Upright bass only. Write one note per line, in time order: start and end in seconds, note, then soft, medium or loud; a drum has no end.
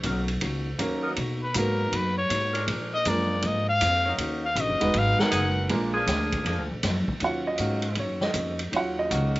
0.04 0.41 B1 loud
0.42 0.79 C#2 medium
0.79 1.16 D#2 loud
1.17 1.54 B2 medium
1.55 1.92 G#2 loud
1.92 2.29 F#2 medium
2.30 2.67 G#2 medium
2.68 3.05 A#2 medium
3.06 3.43 F#2 loud
3.43 3.80 G#2 medium
3.81 4.18 F2 loud
4.18 4.55 D#2 medium
4.55 4.71 A#1 loud
4.69 4.81 F#1 medium
4.82 4.94 D#1 medium
4.95 5.18 G#1 medium
5.32 5.69 F#1 loud
5.71 6.06 A#1 medium
6.07 6.44 D2 loud
6.45 6.58 F2 medium
6.58 6.70 D2 medium
6.71 6.83 A#1 medium
6.83 7.07 F#2 loud
7.08 muted upright bass stroke soft
7.21 7.58 D#2 medium
7.59 7.96 G#2 medium
7.97 8.33 F#2 medium
8.34 8.71 F2 medium
8.72 9.10 D#2 medium
9.11 9.40 C#2 loud